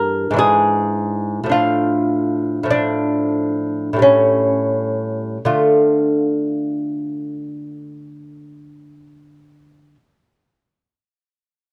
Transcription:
0, 0, Header, 1, 2, 480
1, 0, Start_track
1, 0, Key_signature, -1, "minor"
1, 0, Tempo, 1115242
1, 655, Time_signature, 3, 2, 24, 8
1, 655, Tempo, 1190476
1, 1135, Tempo, 1301518
1, 1615, Tempo, 1428571
1, 4206, End_track
2, 0, Start_track
2, 0, Title_t, "Lute"
2, 0, Program_c, 0, 24
2, 0, Note_on_c, 0, 43, 54
2, 0, Note_on_c, 0, 52, 45
2, 0, Note_on_c, 0, 58, 42
2, 0, Note_on_c, 0, 70, 89
2, 130, Note_off_c, 0, 43, 0
2, 132, Note_on_c, 0, 44, 57
2, 139, Note_off_c, 0, 52, 0
2, 144, Note_on_c, 0, 52, 44
2, 146, Note_off_c, 0, 58, 0
2, 157, Note_off_c, 0, 70, 0
2, 157, Note_on_c, 0, 62, 47
2, 166, Note_on_c, 0, 68, 85
2, 616, Note_off_c, 0, 44, 0
2, 618, Note_on_c, 0, 45, 48
2, 626, Note_off_c, 0, 52, 0
2, 629, Note_on_c, 0, 53, 38
2, 633, Note_off_c, 0, 62, 0
2, 635, Note_off_c, 0, 68, 0
2, 643, Note_on_c, 0, 62, 42
2, 652, Note_on_c, 0, 65, 76
2, 1098, Note_off_c, 0, 45, 0
2, 1103, Note_on_c, 0, 45, 49
2, 1107, Note_off_c, 0, 53, 0
2, 1112, Note_on_c, 0, 53, 40
2, 1115, Note_off_c, 0, 62, 0
2, 1117, Note_off_c, 0, 65, 0
2, 1132, Note_on_c, 0, 62, 72
2, 1580, Note_off_c, 0, 45, 0
2, 1584, Note_on_c, 0, 45, 47
2, 1590, Note_off_c, 0, 53, 0
2, 1596, Note_on_c, 0, 55, 37
2, 1599, Note_off_c, 0, 62, 0
2, 1606, Note_on_c, 0, 57, 38
2, 1616, Note_off_c, 0, 57, 0
2, 1617, Note_on_c, 0, 61, 64
2, 2070, Note_off_c, 0, 45, 0
2, 2076, Note_off_c, 0, 55, 0
2, 2085, Note_off_c, 0, 61, 0
2, 2098, Note_on_c, 0, 50, 48
2, 2101, Note_on_c, 0, 57, 43
2, 2101, Note_on_c, 0, 65, 51
2, 3607, Note_off_c, 0, 50, 0
2, 3609, Note_off_c, 0, 65, 0
2, 3610, Note_off_c, 0, 57, 0
2, 4206, End_track
0, 0, End_of_file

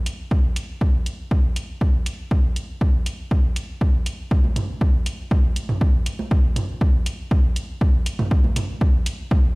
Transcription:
0, 0, Header, 1, 2, 480
1, 0, Start_track
1, 0, Tempo, 500000
1, 300, Time_signature, 4, 2, 24, 8
1, 9169, End_track
2, 0, Start_track
2, 0, Title_t, "Drums"
2, 60, Note_on_c, 9, 42, 75
2, 156, Note_off_c, 9, 42, 0
2, 300, Note_on_c, 9, 36, 109
2, 396, Note_off_c, 9, 36, 0
2, 540, Note_on_c, 9, 42, 72
2, 636, Note_off_c, 9, 42, 0
2, 779, Note_on_c, 9, 36, 104
2, 875, Note_off_c, 9, 36, 0
2, 1020, Note_on_c, 9, 42, 75
2, 1116, Note_off_c, 9, 42, 0
2, 1259, Note_on_c, 9, 36, 108
2, 1355, Note_off_c, 9, 36, 0
2, 1500, Note_on_c, 9, 42, 74
2, 1596, Note_off_c, 9, 42, 0
2, 1739, Note_on_c, 9, 36, 104
2, 1835, Note_off_c, 9, 36, 0
2, 1980, Note_on_c, 9, 42, 73
2, 2076, Note_off_c, 9, 42, 0
2, 2219, Note_on_c, 9, 36, 110
2, 2315, Note_off_c, 9, 36, 0
2, 2460, Note_on_c, 9, 42, 74
2, 2556, Note_off_c, 9, 42, 0
2, 2699, Note_on_c, 9, 36, 105
2, 2795, Note_off_c, 9, 36, 0
2, 2940, Note_on_c, 9, 42, 76
2, 3036, Note_off_c, 9, 42, 0
2, 3179, Note_on_c, 9, 36, 108
2, 3275, Note_off_c, 9, 36, 0
2, 3420, Note_on_c, 9, 42, 75
2, 3516, Note_off_c, 9, 42, 0
2, 3659, Note_on_c, 9, 36, 104
2, 3755, Note_off_c, 9, 36, 0
2, 3900, Note_on_c, 9, 42, 74
2, 3996, Note_off_c, 9, 42, 0
2, 4139, Note_on_c, 9, 36, 113
2, 4235, Note_off_c, 9, 36, 0
2, 4264, Note_on_c, 9, 63, 50
2, 4360, Note_off_c, 9, 63, 0
2, 4379, Note_on_c, 9, 42, 78
2, 4379, Note_on_c, 9, 45, 78
2, 4475, Note_off_c, 9, 42, 0
2, 4475, Note_off_c, 9, 45, 0
2, 4619, Note_on_c, 9, 36, 112
2, 4715, Note_off_c, 9, 36, 0
2, 4860, Note_on_c, 9, 42, 78
2, 4956, Note_off_c, 9, 42, 0
2, 5099, Note_on_c, 9, 36, 117
2, 5099, Note_on_c, 9, 63, 56
2, 5195, Note_off_c, 9, 36, 0
2, 5195, Note_off_c, 9, 63, 0
2, 5340, Note_on_c, 9, 42, 83
2, 5436, Note_off_c, 9, 42, 0
2, 5464, Note_on_c, 9, 45, 82
2, 5560, Note_off_c, 9, 45, 0
2, 5579, Note_on_c, 9, 36, 116
2, 5675, Note_off_c, 9, 36, 0
2, 5820, Note_on_c, 9, 42, 83
2, 5916, Note_off_c, 9, 42, 0
2, 5944, Note_on_c, 9, 63, 54
2, 6040, Note_off_c, 9, 63, 0
2, 6059, Note_on_c, 9, 36, 120
2, 6155, Note_off_c, 9, 36, 0
2, 6299, Note_on_c, 9, 45, 80
2, 6300, Note_on_c, 9, 42, 81
2, 6395, Note_off_c, 9, 45, 0
2, 6396, Note_off_c, 9, 42, 0
2, 6539, Note_on_c, 9, 36, 119
2, 6635, Note_off_c, 9, 36, 0
2, 6780, Note_on_c, 9, 42, 81
2, 6876, Note_off_c, 9, 42, 0
2, 7019, Note_on_c, 9, 36, 120
2, 7115, Note_off_c, 9, 36, 0
2, 7259, Note_on_c, 9, 42, 85
2, 7355, Note_off_c, 9, 42, 0
2, 7499, Note_on_c, 9, 36, 120
2, 7595, Note_off_c, 9, 36, 0
2, 7740, Note_on_c, 9, 42, 83
2, 7836, Note_off_c, 9, 42, 0
2, 7864, Note_on_c, 9, 45, 94
2, 7864, Note_on_c, 9, 63, 55
2, 7960, Note_off_c, 9, 45, 0
2, 7960, Note_off_c, 9, 63, 0
2, 7979, Note_on_c, 9, 36, 121
2, 8075, Note_off_c, 9, 36, 0
2, 8105, Note_on_c, 9, 63, 55
2, 8201, Note_off_c, 9, 63, 0
2, 8220, Note_on_c, 9, 42, 84
2, 8220, Note_on_c, 9, 45, 80
2, 8316, Note_off_c, 9, 42, 0
2, 8316, Note_off_c, 9, 45, 0
2, 8459, Note_on_c, 9, 36, 122
2, 8555, Note_off_c, 9, 36, 0
2, 8700, Note_on_c, 9, 42, 85
2, 8796, Note_off_c, 9, 42, 0
2, 8939, Note_on_c, 9, 36, 126
2, 8940, Note_on_c, 9, 63, 60
2, 9035, Note_off_c, 9, 36, 0
2, 9036, Note_off_c, 9, 63, 0
2, 9169, End_track
0, 0, End_of_file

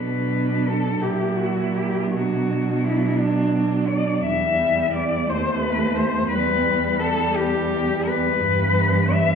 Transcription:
0, 0, Header, 1, 5, 480
1, 0, Start_track
1, 0, Key_signature, 2, "minor"
1, 0, Tempo, 731707
1, 1395, Time_signature, 6, 3, 24, 8
1, 1867, Tempo, 704225
1, 3307, Tempo, 684151
1, 4747, Tempo, 709220
1, 6330, End_track
2, 0, Start_track
2, 0, Title_t, "Cello"
2, 0, Program_c, 0, 42
2, 0, Note_on_c, 0, 71, 56
2, 439, Note_on_c, 0, 69, 64
2, 449, Note_off_c, 0, 71, 0
2, 667, Note_on_c, 0, 67, 62
2, 677, Note_off_c, 0, 69, 0
2, 902, Note_on_c, 0, 66, 58
2, 912, Note_off_c, 0, 67, 0
2, 1153, Note_on_c, 0, 67, 56
2, 1163, Note_off_c, 0, 66, 0
2, 1383, Note_off_c, 0, 67, 0
2, 1387, Note_on_c, 0, 66, 64
2, 1862, Note_on_c, 0, 64, 65
2, 1872, Note_off_c, 0, 66, 0
2, 2096, Note_on_c, 0, 62, 68
2, 2106, Note_off_c, 0, 64, 0
2, 2570, Note_on_c, 0, 74, 69
2, 2580, Note_off_c, 0, 62, 0
2, 2812, Note_off_c, 0, 74, 0
2, 2816, Note_on_c, 0, 76, 80
2, 3292, Note_off_c, 0, 76, 0
2, 3297, Note_on_c, 0, 74, 78
2, 3542, Note_on_c, 0, 72, 77
2, 3553, Note_off_c, 0, 74, 0
2, 3777, Note_on_c, 0, 71, 74
2, 3787, Note_off_c, 0, 72, 0
2, 4004, Note_on_c, 0, 72, 75
2, 4015, Note_off_c, 0, 71, 0
2, 4244, Note_off_c, 0, 72, 0
2, 4249, Note_on_c, 0, 71, 83
2, 4734, Note_on_c, 0, 69, 86
2, 4744, Note_off_c, 0, 71, 0
2, 4986, Note_on_c, 0, 67, 93
2, 4997, Note_off_c, 0, 69, 0
2, 5465, Note_on_c, 0, 71, 86
2, 5476, Note_off_c, 0, 67, 0
2, 6184, Note_on_c, 0, 76, 97
2, 6194, Note_off_c, 0, 71, 0
2, 6330, Note_off_c, 0, 76, 0
2, 6330, End_track
3, 0, Start_track
3, 0, Title_t, "Cello"
3, 0, Program_c, 1, 42
3, 0, Note_on_c, 1, 62, 44
3, 656, Note_off_c, 1, 62, 0
3, 681, Note_on_c, 1, 64, 44
3, 1381, Note_off_c, 1, 64, 0
3, 1402, Note_on_c, 1, 62, 49
3, 2804, Note_off_c, 1, 62, 0
3, 2831, Note_on_c, 1, 59, 53
3, 5687, Note_off_c, 1, 59, 0
3, 5713, Note_on_c, 1, 59, 60
3, 6330, Note_off_c, 1, 59, 0
3, 6330, End_track
4, 0, Start_track
4, 0, Title_t, "Cello"
4, 0, Program_c, 2, 42
4, 0, Note_on_c, 2, 54, 44
4, 2829, Note_on_c, 2, 55, 50
4, 2840, Note_off_c, 2, 54, 0
4, 3549, Note_off_c, 2, 55, 0
4, 3553, Note_on_c, 2, 57, 57
4, 4252, Note_off_c, 2, 57, 0
4, 4276, Note_on_c, 2, 55, 62
4, 5691, Note_off_c, 2, 55, 0
4, 5718, Note_on_c, 2, 52, 61
4, 6330, Note_off_c, 2, 52, 0
4, 6330, End_track
5, 0, Start_track
5, 0, Title_t, "Cello"
5, 0, Program_c, 3, 42
5, 0, Note_on_c, 3, 47, 46
5, 648, Note_off_c, 3, 47, 0
5, 671, Note_on_c, 3, 46, 48
5, 1396, Note_on_c, 3, 47, 48
5, 1406, Note_off_c, 3, 46, 0
5, 2829, Note_off_c, 3, 47, 0
5, 2832, Note_on_c, 3, 40, 55
5, 3552, Note_on_c, 3, 39, 60
5, 3563, Note_off_c, 3, 40, 0
5, 4254, Note_off_c, 3, 39, 0
5, 4259, Note_on_c, 3, 40, 59
5, 5682, Note_off_c, 3, 40, 0
5, 5712, Note_on_c, 3, 43, 66
5, 6330, Note_off_c, 3, 43, 0
5, 6330, End_track
0, 0, End_of_file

